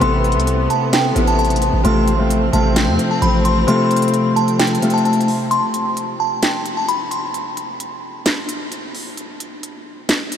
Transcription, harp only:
0.00 C3 B3 E4 A4
1.15 C3 B3 E4 A4
1.83 C3 A3 F4 A4
2.18 C3 A3 F4 A4
2.52 C3 A3 F4 A4
3.67 C3 A3 F4 A4
4.81 C3 A3 F4 A4

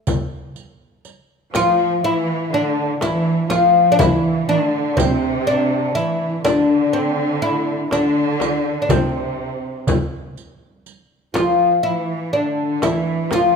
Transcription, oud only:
1.55 F4
2.04 E4
2.54 D4
3.02 E4
3.50 F4
3.92 D4
3.99 E4
4.49 D4
4.97 C4
5.47 D4
5.95 E4
6.45 D4
6.93 C4
7.42 E4
7.93 D4
8.82 D4
8.90 C4
11.34 F4
11.83 E4
12.33 D4
12.83 E4
13.33 F4

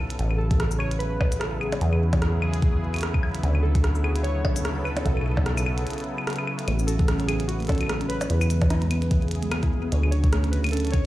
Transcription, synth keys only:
0.38 A4
0.79 C#5
0.99 B4
1.39 A4
1.60 G#4
3.63 A4
4.03 G#4
4.23 C#5
4.84 B4
5.04 A4
6.87 A4
7.27 G#4
7.48 F#4
7.68 A4
8.08 B4
10.11 C#5
10.51 B4
10.71 A4
10.92 C#5

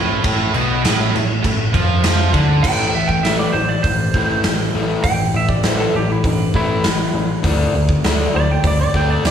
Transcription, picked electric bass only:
Already playing: A1
0.24 A1
0.55 B1
0.85 A1
1.16 A1
1.45 A1
1.74 F2
2.05 F2
2.34 D2
2.64 A1
2.95 A1
3.25 A1
3.54 A1
3.84 A1
4.14 A1
4.45 A1
4.75 A1
5.04 A1
5.34 A1
5.64 A1
5.95 A1
6.24 A1
6.54 A1
6.86 A1
7.14 A1
7.44 D2
7.74 D2
8.05 D2
8.35 D2
8.64 D2
8.94 D2
9.24 D2

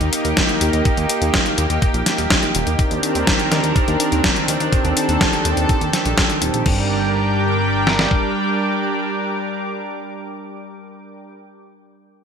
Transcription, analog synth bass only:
0.01 D#2
0.25 D#2
0.61 D#2
0.73 D#2
0.97 D#2
1.22 D#2
1.58 D#2
1.70 D#2
1.94 A#1
2.18 D#1
2.55 D#1
2.67 D#2
2.91 D#2
3.15 D#2
3.52 D#2
3.64 D#2
3.88 D#2
4.12 D#2
4.48 D#2
4.60 D#2
4.85 D#2
5.09 D#2
5.45 D#2
5.57 D#2
5.81 D#2
6.05 A#1
6.42 D#1
6.54 A#1
6.66 G1

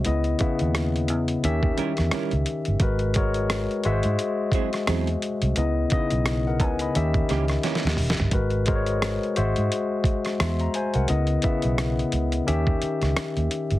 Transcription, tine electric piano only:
0.05 C#3 B3 E4 D#5
0.40 C#3 B3 E4 E5
1.43 D#3 C#4 G4 E5
2.81 G#3 F#4 A#4 B4
3.16 G#3 F#4 A#4 C#5
3.85 G#3 F#4 B4 E5
3.92 C5
5.57 C#3 B3 E4 D#5
5.91 C#3 B3 D#4 D#5
5.99 E4
6.47 A#4 F#5
6.61 B4 G#5
6.81 D#5 B5
6.95 D#3 C#4 G4 E5
8.33 G#3 F#4 A#4 B4
8.67 G#3 F#4 A#4 C5
8.76 C#5
9.36 G#3 F#4 C5 E5
10.41 E5 C6
10.61 A#5
10.75 C5 G#5
10.95 A#4 F#5
11.08 C#3 B3 E4 D#5
11.43 C#3 B3 E4 E5
12.46 D#3 C#4 G4 E5

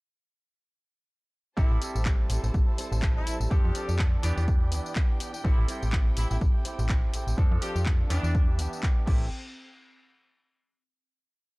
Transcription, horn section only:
1.58 E4
3.16 E4
3.51 G4
5.45 E4
6.17 E4
6.31 E4
7.62 G4
8.10 D4

